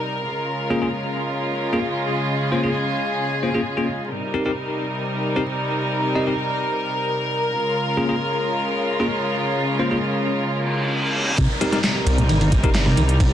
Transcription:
Already playing: C3 G3 D#4 A#4
0.25 C#3 G#3 F4
0.70 A#3 C#4 F4 G#4
0.82 A#3 C#4 F4 G#4
1.73 A#3 C#4 F4 G#4
2.07 G#4
2.52 A#3 C#4 F4 C5
2.63 A#3 C#4 F4 G#4
3.43 A#3 C#4 F4 C5
3.54 A#3 C#4 F4 G#4
3.77 A#3 C#4 F4 G#4
4.11 C3 G3 D#4 A#4
4.34 C4 D#4 G4 A#4
4.46 C4 D#4 G4 A#4
5.36 C4 D#4 G4 A#4
6.15 C4 D#4 G4 D#5
6.27 C4 D#4 G4 A#4
7.52 C#3 G#3 F4
7.97 A#3 C#4 F4 G#4
8.09 A#3 C#4 F4 G#4
9.00 A#3 C#4 F4 G#4
9.79 A#3 C#4 F4 C5
9.91 A#3 C#4 F4 G#4
10.48 reverse cymbal
11.38 C3 G3 D#4 A#4, kick, closed hi-hat, ride, downlifter
11.61 C4 D#4 G4 A#4, snare, closed hi-hat, ride
11.72 C4 D#4 G4 A#4, snare, closed hi-hat
11.84 snare, clap, closed hi-hat, ride
12.06 C2, closed hi-hat, ride
12.18 A#2, closed hi-hat
12.29 G1 D#3, closed hi-hat, ride
12.41 D#3, ride
12.52 kick, closed hi-hat, ride
12.64 C4 D#4 G4 A#4, kick, closed hi-hat
12.75 snare, clap, closed hi-hat, ride
12.86 C3, snare
12.97 C2 D#3, closed hi-hat, ride
13.09 closed hi-hat
13.20 kick, closed hi-hat, ride

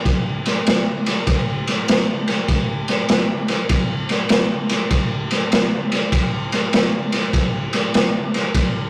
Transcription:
0.05 kick, snare, ride
0.46 snare, ride
0.67 snare, ride
1.06 snare, ride
1.27 kick, snare, ride
1.67 snare, ride
1.88 snare, ride
2.28 snare, ride
2.48 kick, snare, ride
2.88 snare, ride
3.09 snare, ride
3.48 snare, ride
3.69 kick, snare, ride
4.09 snare, ride
4.29 snare, ride
4.69 snare, ride
4.91 kick, snare, ride
5.31 snare, ride
5.52 snare, ride
5.92 snare, ride
6.12 kick, snare, ride
6.52 snare, ride
6.73 snare, ride
7.12 snare, ride
7.33 kick, snare, ride
7.73 snare, ride
7.94 snare, ride
8.34 snare, ride
8.55 kick, snare, ride

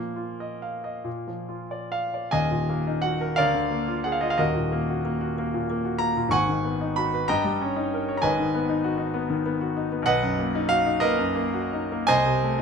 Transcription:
Already playing: A#2 F3 A#3
0.16 F4
0.40 D#5
0.62 F5
0.84 D#5
1.04 A#2
1.27 F3
1.49 F4
1.71 D5
1.92 F5
2.14 D5
2.31 D#1 D#2 D#5 G#5
2.51 A#2
2.69 A#3
2.87 D#4
3.02 F#4 F#5
3.21 A#4
3.36 D2 A#4 D5 F5
3.54 D3
3.71 A#3
3.88 F4
4.04 G#4 F#5
4.12 F5
4.21 F4 D#5
4.30 F5
4.38 D#1 D#2 F#4 A#4 D#5
4.56 A#2
4.72 A#3
4.89 F#4
5.05 A#3
5.21 F#4
5.38 A#3
5.54 A#2
5.70 A#3
5.85 F#4
5.99 A#3 A#5
6.17 A#2
6.28 G#1 G#2 F#5 G#5 C#6
6.49 D#3
6.65 B3
6.81 D#4
6.96 F#4 B5
7.14 B4
7.28 G2 D#5 G5 A#5
7.45 G3
7.61 C#4
7.76 D#4
7.94 A#4
8.09 C#5
8.17 A#5
8.22 G#1 G#2 B4 D#5 G#5
8.39 D#3
8.54 B3
8.69 D#4
8.84 F#4
8.98 D#4
9.14 B3
9.30 D#3
9.46 B3
9.61 F#4
9.77 D#4
9.92 B3
10.02 B1 F#5
10.07 B4 D#5
10.23 F#2
10.39 A#3
10.55 D#4
10.69 F#4 F5
10.86 D#4
11.00 A#3 A#4 B4 D#5
11.19 F#2
11.35 A#3
11.54 F#4
11.73 D#4
11.92 A#3
12.07 C2 C5 D#5 G#5
12.26 C3
12.43 A3

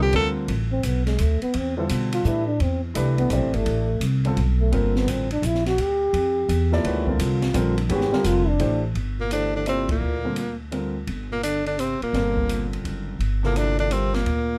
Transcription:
Already playing: C2 D3 G3 C4 F4 A#4
0.02 G4
0.13 D2 D3 G3 C4 F4 A4 A#4, ride
0.48 A1, ride
0.72 C4
0.83 B1 B3, hi-hat pedal, ride
1.06 G#3, snare, ride
1.18 D2 A3, hi-hat pedal, ride
1.42 B3, muted upright bass stroke, ride
1.54 E2 C4, ride
1.77 D3 E3 G3 F4 A4 C5
1.89 B2, hi-hat pedal, ride
2.12 F4, ride
2.24 A2 E3 A3 D4 E4 G4 B4, hi-hat pedal
2.47 D4
2.60 E2 C4, ride
2.84 E3
2.94 C2 E3 G3 A3 D4 G4 B4, hi-hat pedal, ride
3.18 B3, ride
3.30 B1 E3 A3 C4 D4 G4 D5, hi-hat pedal, ride
3.41 A1
3.53 G1 A3, ride
3.65 A1, ride
4.00 C2, hi-hat pedal, ride
4.25 D3 G3 C4 F4 A4, ride
4.37 B1, ride
4.60 A3
4.72 G1 D3 G3 A#3 C4 F4 A#4, ride
4.96 B3, snare
5.07 A1 C4, hi-hat pedal, ride
5.31 D4, ride
5.42 A#1 E4, hi-hat pedal, ride
5.54 snare
5.66 F#4, snare, ride
5.77 D2 G4, ride
6.13 F2, ride
6.49 E2, hi-hat pedal, ride
6.71 F3 A#3 E4 A4 D5, snare
6.84 D2 D#3 G#3 C#4 F#4 B4, ride
7.07 D3 G3 C4 F4 A#4, kick
7.19 C2 F4, hi-hat pedal, ride
7.42 snare, ride
7.54 A#1 D3 G3 C4 F4 A#4, hi-hat pedal, ride
7.78 D4, ride
7.89 G1 D#3 G#3 C#4 F#4 G4 B4, ride
8.01 snare
8.12 D3 G3 C4 F4 A#4, muted upright bass stroke, snare
8.24 F1 F4, hi-hat pedal, ride
8.48 D4
8.59 A1 E3 A3 D4 G4 C5, ride
8.95 G1, ride
9.18 A#2 A#3
9.31 D3 E3 A3 D4 G4 C5, hi-hat pedal, ride
9.55 D3 D4
9.66 C3 F3 A#3 C4 E4 A4 D5, hi-hat pedal, ride
9.89 A#2 A#3, kick, ride
10.01 D2
10.25 D3 G3 C4 F4 A#4
10.36 hi-hat pedal, ride
10.71 D3 G3 C4 F4 A#4, ride
11.07 G1, ride
11.31 A#2 A#3
11.43 D3 D4, hi-hat pedal, ride
11.66 D3 D4, ride
11.78 C3 C4, hi-hat pedal, ride
12.01 A#2 A#3, muted upright bass stroke, ride
12.13 G1 D3 G3 C4 F4 A#4, snare, ride
12.37 kick
12.49 hi-hat pedal, ride
12.73 ride
12.84 F#1, ride
13.19 G1, ride
13.43 A#2 C3 F3 A#3 E4 A4, snare
13.56 D3 D4, hi-hat pedal, ride
13.79 D3 D4, ride
13.89 C3 D3 G3 C4 F4 A#4, hi-hat pedal, ride
14.14 A#2 A#3, snare, ride
14.25 D2, ride

